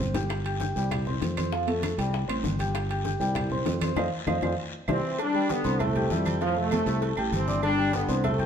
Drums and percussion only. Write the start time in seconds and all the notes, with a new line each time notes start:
0.00 short guiro
0.14 low bongo, low conga, high timbale, short guiro
0.30 high bongo, high conga, high timbale, long guiro, claves
0.45 high bongo, high conga, high timbale
0.60 high bongo, high conga, short guiro
0.75 high conga, short guiro
0.91 high bongo, high conga, low conga, high timbale, long guiro, claves
1.06 high bongo, high conga, low conga
1.22 high bongo, low bongo, high conga, high timbale, short guiro
1.37 high bongo, high conga, high timbale, short guiro, claves
1.52 high bongo, high conga, long guiro
1.67 high bongo, high conga, high timbale
1.83 high bongo, high conga, high timbale, short guiro, claves
1.99 high timbale, short guiro
2.14 high bongo, long guiro
2.29 high bongo, high conga, high timbale, claves
2.44 high bongo, low bongo, high conga, short guiro
2.59 high bongo, high conga, high timbale, short guiro
2.75 high bongo, high timbale, long guiro, claves
2.90 high bongo, high timbale
3.05 high bongo, high conga, short guiro
3.20 high conga, short guiro
3.35 high bongo, high conga, low conga, high timbale, long guiro, claves
3.50 high bongo, high conga, low conga
3.66 high bongo, low bongo, high conga, high timbale, low timbale, short guiro
3.81 high bongo, high conga, high timbale, short guiro, claves
3.96 low bongo, high conga, high timbale, long guiro, claves
4.27 low bongo, high conga, high timbale, long guiro, claves
4.42 low bongo, high conga, high timbale, long guiro, claves
4.88 low bongo, high conga, high timbale, long guiro, claves
5.18 cowbell, high conga, low agogo, long guiro, claves
5.35 high conga
5.49 cowbell, high conga, low agogo, short guiro
5.64 cowbell, high conga, short guiro
5.79 cowbell, high conga, low conga, low agogo, long guiro, claves
5.96 high conga, low conga, low agogo
6.10 cowbell, high conga, low agogo, short guiro
6.25 cowbell, high conga, low agogo, short guiro, claves
6.41 cowbell, high conga, low agogo, long guiro
6.57 high conga
6.71 cowbell, high conga, low agogo, short guiro, claves
6.86 cowbell, short guiro
7.02 cowbell, low agogo, long guiro
7.17 high conga, low agogo, claves
7.32 cowbell, high conga, low agogo, short guiro
7.48 high conga, short guiro
7.63 cowbell, high conga, low agogo, long guiro, claves
7.93 cowbell, high conga, low agogo, short guiro
8.09 cowbell, short guiro
8.24 cowbell, high conga, low conga, low agogo, long guiro, claves
8.39 high conga, low conga, low agogo